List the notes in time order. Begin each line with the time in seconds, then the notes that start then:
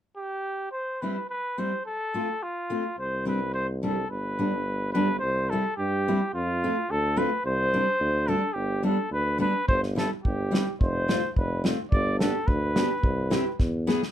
0.17 G4
0.72 C5
1.02 G3 C4 E4 B4
1.30 B4
1.58 G3 C4 E4 C5
1.86 A4
2.14 A3 C4 F4
2.43 F4
2.70 A3 C4 F4
2.99 C2 C5
3.25 G3 C4 D4 B4
3.54 C5
3.83 G3 C4 D4 A4
4.09 G1 B4
4.39 G3 B3 D4
4.92 G3 B3 D4 B4
5.19 C2 C5
5.50 G3 C4 E4 A4
5.77 G2 G4
6.08 G3 C4 E4
6.34 F2 F4
6.64 A3 C4 F4
6.90 D2 A4
7.17 A3 C4 F4 B4
7.46 C2 C5
7.73 G3 C4 D4
8.00 D2
8.28 G3 C4 D4 A4
8.54 G1 G4
8.83 G3 B3 D4 A4
9.10 D2 B4
9.38 G3 B3 D4 B4
9.68 G1 C5, kick
9.83 snare
9.95 G3 C4 E4 A4, snare
10.24 G1 G4, kick
10.51 G3 C4 E4, snare
10.80 F1 C5, kick
11.08 A3 C4 F4, snare
11.37 F1 B4, kick
11.64 A3 C4 F4, snare
11.91 G1 D5, kick
12.19 B3 D4 G4 A4, snare
12.47 D2 B4, kick
12.76 B3 D4 G4, snare
13.03 C2, kick
13.31 C4 E4 G4, snare
13.59 E2, kick, snare
13.87 B3 E4 G#4, snare
14.03 snare